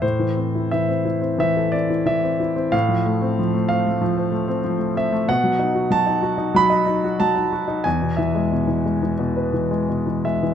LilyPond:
<<
  \new Staff \with { instrumentName = "Grand piano" } { \time 4/4 \key a \minor \tempo 4 = 92 c''4 e''4 e''8 d''8 e''4 | f''4. f''4. r8 e''8 | fis''4 a''4 b''4 a''4 | gis''8 e''4. r4. e''8 | }
  \new Staff \with { instrumentName = "Grand piano" } { \time 4/4 \key a \minor a,16 e16 c'16 e'16 e16 c'16 e'16 c'16 e16 a'16 c'16 e'16 e16 c'16 e'16 c'16 | a,16 f16 a16 c'16 f16 a16 c'16 a16 f16 c''16 a16 c'16 f16 a16 c'16 a16 | b,16 fis16 dis'16 fis'16 fis16 dis'16 fis'16 dis'16 fis16 dis''16 dis'16 fis'16 fis16 dis'16 fis'16 dis'16 | e,16 b,16 e16 gis16 b,16 e16 gis16 e16 b,16 b'16 e16 gis16 b,16 e16 gis16 e16 | }
>>